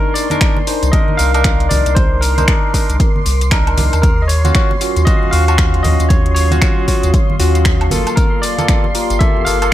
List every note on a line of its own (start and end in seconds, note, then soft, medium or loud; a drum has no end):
0.00 0.27 D4 loud
0.00 0.27 D#4 medium
0.00 0.13 A#4 medium
0.00 0.27 A#4 loud
0.00 3.99 A#4 medium
0.00 3.99 C6 medium
0.00 8.16 C6 medium
0.00 3.99 D6 medium
0.14 0.88 D5 loud
0.14 open hi-hat loud
0.14 tambourine medium
0.30 0.39 D4 medium
0.30 0.39 D#4 medium
0.30 0.39 A#4 loud
0.30 closed hi-hat medium
0.30 tambourine soft
0.30 high conga medium
0.41 0.57 D4 medium
0.41 0.57 D#4 medium
0.41 0.57 A#4 medium
0.41 finger snap loud
0.41 kick loud
0.41 closed hi-hat medium
0.41 tambourine soft
0.57 muted conga medium
0.67 0.91 D4 medium
0.67 0.91 D#4 medium
0.67 0.91 C5 medium
0.67 open hi-hat loud
0.67 tambourine medium
0.83 0.91 C2 loud
0.83 closed hi-hat medium
0.83 tambourine soft
0.92 1.16 D4 medium
0.92 1.16 D#4 medium
0.92 1.16 A#4 loud
0.92 1.19 D#5 loud
0.92 kick loud
0.92 closed hi-hat medium
0.92 tambourine soft
1.08 high conga medium
1.17 1.68 C2 medium
1.17 1.31 D4 medium
1.17 1.31 D#4 medium
1.17 1.31 A#4 medium
1.17 1.66 F5 loud
1.17 open hi-hat loud
1.17 tambourine medium
1.17 muted conga soft
1.34 2.34 D4 loud
1.34 2.34 D#4 medium
1.34 2.34 A#4 loud
1.34 closed hi-hat medium
1.34 tambourine soft
1.34 high woodblock medium
1.44 finger snap loud
1.44 kick loud
1.44 closed hi-hat medium
1.44 tambourine soft
1.60 closed hi-hat soft
1.69 1.83 C2 loud
1.69 1.97 D5 loud
1.69 open hi-hat loud
1.69 tambourine medium
1.69 high conga medium
1.69 low conga medium
1.86 2.45 C2 medium
1.86 closed hi-hat medium
1.86 tambourine soft
1.86 muted conga medium
1.95 2.20 C5 loud
1.95 kick loud
1.95 closed hi-hat medium
1.95 tambourine soft
2.21 3.21 A#4 medium
2.21 open hi-hat loud
2.21 tambourine medium
2.38 2.46 D4 medium
2.38 2.46 D#4 medium
2.38 2.46 C5 loud
2.38 closed hi-hat medium
2.38 tambourine soft
2.38 high conga medium
2.48 2.72 D4 medium
2.48 2.72 D#4 medium
2.48 2.72 A#4 medium
2.48 finger snap loud
2.48 kick loud
2.48 closed hi-hat medium
2.48 tambourine soft
2.74 2.96 D4 medium
2.74 2.96 D#4 medium
2.74 2.96 A#4 medium
2.74 kick medium
2.74 open hi-hat loud
2.74 tambourine medium
2.90 2.98 C2 loud
2.90 closed hi-hat soft
2.90 tambourine soft
3.00 kick loud
3.00 closed hi-hat medium
3.00 tambourine soft
3.16 high conga medium
3.26 3.75 C2 loud
3.26 open hi-hat loud
3.26 tambourine medium
3.26 muted conga soft
3.41 closed hi-hat medium
3.41 tambourine soft
3.51 4.02 D4 medium
3.51 4.02 D#4 medium
3.51 4.02 A#4 loud
3.51 finger snap loud
3.51 kick loud
3.51 closed hi-hat medium
3.51 tambourine soft
3.67 closed hi-hat soft
3.67 high woodblock medium
3.77 3.90 C2 loud
3.77 open hi-hat loud
3.77 tambourine medium
3.77 high conga loud
3.77 low conga medium
3.93 4.52 D#2 medium
3.93 closed hi-hat medium
3.93 tambourine soft
3.93 high woodblock medium
4.02 7.87 F#3 medium
4.02 4.24 A#4 loud
4.02 7.87 C#5 medium
4.02 9.73 F5 medium
4.02 7.87 D#6 medium
4.02 kick loud
4.02 closed hi-hat medium
4.02 tambourine soft
4.22 4.29 D#5 medium
4.28 5.08 C#5 loud
4.28 open hi-hat loud
4.28 tambourine medium
4.45 4.53 C#4 medium
4.45 4.53 F4 medium
4.45 4.53 F#4 loud
4.45 closed hi-hat medium
4.45 tambourine soft
4.45 high conga loud
4.55 4.71 C#4 medium
4.55 4.71 F4 medium
4.55 4.71 F#4 loud
4.55 finger snap loud
4.55 kick loud
4.55 closed hi-hat medium
4.55 tambourine soft
4.71 muted conga medium
4.81 5.04 C#4 medium
4.81 5.04 F4 medium
4.81 5.04 F#4 medium
4.81 open hi-hat loud
4.81 tambourine medium
4.96 5.05 D#2 loud
4.96 closed hi-hat soft
4.96 tambourine soft
5.05 5.30 C#4 medium
5.05 5.30 F4 medium
5.05 5.30 F#4 loud
5.05 5.33 D#5 loud
5.05 kick loud
5.05 closed hi-hat medium
5.05 tambourine soft
5.23 high conga medium
5.31 5.81 D#2 loud
5.31 5.45 C#4 medium
5.31 5.45 F4 medium
5.31 5.45 F#4 medium
5.31 5.80 F5 loud
5.31 open hi-hat loud
5.31 tambourine medium
5.31 muted conga soft
5.48 6.48 C#4 loud
5.48 6.48 F4 medium
5.48 6.48 F#4 loud
5.48 closed hi-hat medium
5.48 tambourine soft
5.48 high woodblock medium
5.58 finger snap loud
5.58 kick loud
5.58 closed hi-hat medium
5.58 tambourine soft
5.74 closed hi-hat soft
5.83 5.97 D#2 medium
5.83 6.08 D#5 loud
5.83 open hi-hat loud
5.83 tambourine medium
5.83 high conga medium
5.83 low conga medium
5.99 6.59 D#2 medium
5.99 closed hi-hat medium
5.99 tambourine soft
5.99 muted conga soft
6.09 6.33 C#5 loud
6.09 kick loud
6.09 closed hi-hat medium
6.09 tambourine soft
6.26 closed hi-hat soft
6.35 7.35 C#5 medium
6.35 open hi-hat loud
6.35 tambourine medium
6.51 6.60 C#4 medium
6.51 6.60 F4 medium
6.51 6.60 F#4 loud
6.51 closed hi-hat soft
6.51 tambourine soft
6.51 high conga loud
6.62 6.85 C#4 medium
6.62 6.85 F4 medium
6.62 6.85 F#4 medium
6.62 finger snap loud
6.62 kick loud
6.62 closed hi-hat medium
6.62 tambourine soft
6.88 7.10 C#4 medium
6.88 7.10 F4 medium
6.88 7.10 F#4 medium
6.88 kick medium
6.88 open hi-hat loud
6.88 tambourine medium
7.03 7.12 D#2 loud
7.03 closed hi-hat soft
7.03 tambourine soft
7.14 kick loud
7.14 closed hi-hat medium
7.14 tambourine soft
7.30 high conga medium
7.39 7.88 D#2 loud
7.39 7.89 C#4 medium
7.39 7.89 F4 medium
7.39 7.89 F#4 loud
7.39 open hi-hat loud
7.39 tambourine medium
7.39 muted conga soft
7.55 closed hi-hat medium
7.55 tambourine soft
7.65 finger snap loud
7.65 kick loud
7.65 closed hi-hat medium
7.65 tambourine soft
7.81 closed hi-hat soft
7.81 high woodblock medium
7.91 8.04 G1 medium
7.91 8.55 A#3 loud
7.91 8.55 F4 medium
7.91 9.73 G4 medium
7.91 8.55 A4 loud
7.91 9.73 G5 medium
7.91 9.73 A5 medium
7.91 open hi-hat loud
7.91 tambourine medium
7.91 high conga loud
7.91 low conga medium
8.07 closed hi-hat medium
8.07 tambourine soft
8.07 high woodblock medium
8.16 8.43 A#4 loud
8.16 9.73 C6 medium
8.16 kick loud
8.16 closed hi-hat medium
8.16 tambourine soft
8.42 9.22 D5 loud
8.42 open hi-hat loud
8.42 tambourine medium
8.58 8.66 A#3 medium
8.58 8.66 F4 medium
8.58 8.66 A4 loud
8.58 closed hi-hat medium
8.58 tambourine soft
8.58 high conga loud
8.68 8.85 A#3 medium
8.68 8.85 F4 medium
8.68 8.85 A4 medium
8.68 finger snap loud
8.68 kick loud
8.68 closed hi-hat medium
8.68 tambourine soft
8.84 muted conga medium
8.95 9.18 A#3 medium
8.95 9.18 F4 medium
8.95 9.18 A#4 medium
8.95 open hi-hat loud
8.95 tambourine medium
9.10 9.19 G1 loud
9.10 closed hi-hat soft
9.10 tambourine soft
9.19 9.44 A#3 medium
9.19 9.44 F4 medium
9.19 9.44 A4 loud
9.19 9.47 E5 loud
9.19 kick loud
9.19 closed hi-hat medium
9.19 tambourine soft
9.37 high conga medium
9.45 9.73 G1 medium
9.45 9.58 A#3 medium
9.45 9.58 F4 medium
9.45 9.58 A4 medium
9.45 9.73 F5 loud
9.45 open hi-hat loud
9.45 tambourine medium
9.45 muted conga soft
9.62 9.73 A#3 medium
9.62 9.73 F4 medium
9.62 9.73 A4 loud
9.62 closed hi-hat soft
9.62 tambourine soft
9.62 high woodblock medium